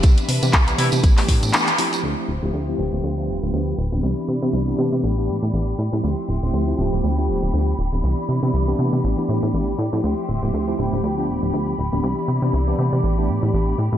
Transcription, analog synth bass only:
X:1
M:4/4
L:1/16
Q:"Swing 16ths" 1/4=120
K:Ddor
V:1 name="Analog synth bass" clef=bass
C,, z C, C, C,,2 C, C, A,,,2 A,, A,, z4 | D,, z D,,, D,,, D,,2 D,,, D,,, D,,2 D,,, D,,, D,,2 D,,, D,,, | C,, z C, C, C,,2 C, C, A,,,2 A,, A,, A,,,2 A,, A,, | D,, z D,,, D,,, D,,2 D,,, D,,, D,,2 D,,, D,,, D,,2 D,,, D,,, |
C,, z C, C, C,,2 C, C, A,,, z A,, A,, A,,,2 A,, A,, | D,, z D,,, D,,, D,,2 D,,, D,,, D,,2 D,,, D,,, D,,2 D,,, D,,, | C,, z C, C, C,,2 C, C, A,,,2 A,, A,, A,,,2 A,, A,, |]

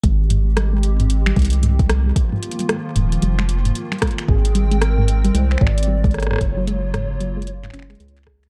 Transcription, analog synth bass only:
X:1
M:4/4
L:1/8
Q:"Swing 16ths" 1/4=113
K:Eb
V:1 name="Analog synth bass" clef=bass
A,,,4- A,,, C,,3 | z3 E,,, F,,,2 z2 | A,,,4 C,, A,,,3 | _G,,,4- G,,, G,,, _D,,2 |]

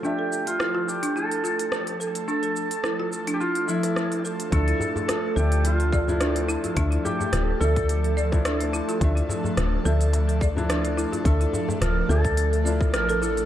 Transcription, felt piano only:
X:1
M:4/4
L:1/16
Q:"Swing 16ths" 1/4=107
K:Dm
V:1 name="Felt piano"
[F,De]16- | [F,De]16 | [F,DE]6 [F,De]4- [F,De] [F,DE] z4 | [F,De]6 [F,De]4- [F,De] [F,DE] z4 |
[F,De]6 [F,De]4- [F,De] [F,DE] z4 | [F,De]6 [F,De]4 [F,DE]6 |]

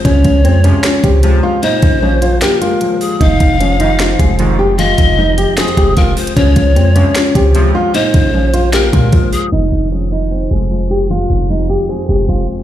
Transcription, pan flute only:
X:1
M:4/4
L:1/8
Q:1/4=152
K:Fm
V:1 name="Pan flute"
d6 z2 | c4 B3 A | f6 z2 | e4 A2 B c |
d6 z2 | c4 B3 A | z8 | z8 |]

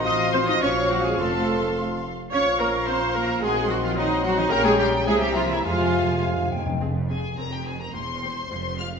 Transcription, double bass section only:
X:1
M:2/4
L:1/8
Q:1/4=106
K:Bbm
V:1 name="Double bass section" clef=bass
=A,,,2 B,,,2 | F,,,3 z | B,,,4 | B,,,4 |
[K:Fm] B,,,2 C,,2 | F,,3 z | F,,,2 F,,,2 | =E,,,2 F,,,2 |]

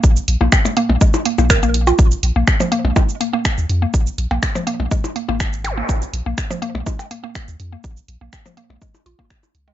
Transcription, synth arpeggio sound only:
X:1
M:4/4
L:1/16
Q:1/4=123
K:Bbm
V:1 name="Synth arpeggio sound"
z3 B, z2 B, z A, z B, B, B B, z F | z3 B, z F, B, z A, z B, B, z3 B, | z3 B, z F, B, z A, z B, B, z3 B, | z3 B, z F, B, z A, z B, B, z3 B, |
z3 B, z F, B, z A, z F B, z3 A, |]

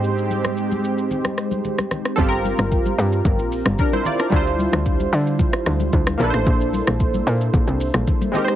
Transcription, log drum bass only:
X:1
M:4/4
L:1/16
Q:1/4=112
K:Gdor
V:1 name="Log drum bass" clef=bass
z16 | G,,,3 G,,,3 G,,2 G,,, B,,,2 G,,, z4 | D,,3 D,,3 D,3 z D,,2 D,,2 B,,, A,,, | B,,,3 B,,,3 B,,2 B,,, C,,2 B,,, z4 |]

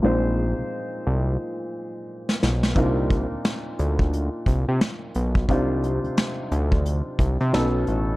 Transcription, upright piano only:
X:1
M:4/4
L:1/8
Q:"Swing 16ths" 1/4=88
K:Cm
V:1 name="Upright piano"
[B,,A,CEc]8 | [B,,CDEFB]8 | [C,CDEFc]6 [=B,,=B,^C^D=A]2 |]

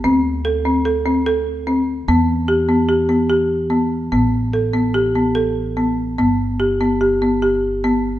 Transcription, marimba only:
X:1
M:5/4
L:1/8
Q:1/4=146
K:Am
V:1 name="Marimba"
C2 A C A C A2 C2 | B,2 G B, G B, G2 B,2 | B,2 A B, G B, A2 B,2 | B,2 G B, G B, G2 B,2 |]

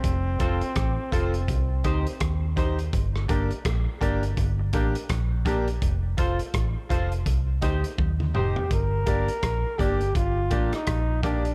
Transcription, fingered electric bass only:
X:1
M:4/4
L:1/16
Q:"Swing 16ths" 1/4=83
K:Gm
V:1 name="Fingered electric bass" clef=bass
F,,,2 F,,, z A,,, z F,,,2 C,,2 D,, z E,,4 | G,,,2 G,,, z B,,, z G,,,2 G,,,2 A,,, z B,,,4 | F,,,2 F,,, z A,,, z F,,,2 C,,2 D,, z E,,2 F,,, z | G,,,2 G,,, z B,,, z G,,,2 G,,,2 A,,, z B,,,4 |]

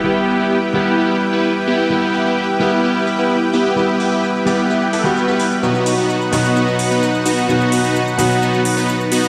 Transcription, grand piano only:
X:1
M:4/4
L:1/16
Q:1/4=129
K:Em
V:1 name="Grand piano"
[G,B,EG]6 [G,B,EG]8- [G,B,EG]2 | [G,B,EG]6 [G,B,EG]8- [G,B,EG]2 | [G,B,EG]6 [G,B,EG]4- [G,B,EG] [G,B,EG]4- [G,B,EG] | [B,,F,B,^DF]6 [B,,F,B,DF]8- [B,,F,B,DF]2 |
[B,,F,B,^DF]6 [B,,F,B,DF]8- [B,,F,B,DF]2 |]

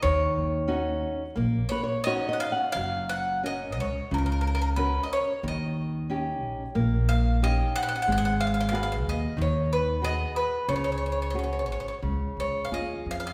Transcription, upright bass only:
X:1
M:4/4
L:1/8
Q:1/4=90
K:Ebm
V:1 name="Upright bass" clef=bass
E,, E,,3 B,,, z3 | [K:F#] F,,,3 C,, C,,4 | D,,3 A,,, A,,,4 | G,,,3 D,, D,,4 |
C,,3 G,,, C,, C,, D,, E,, |]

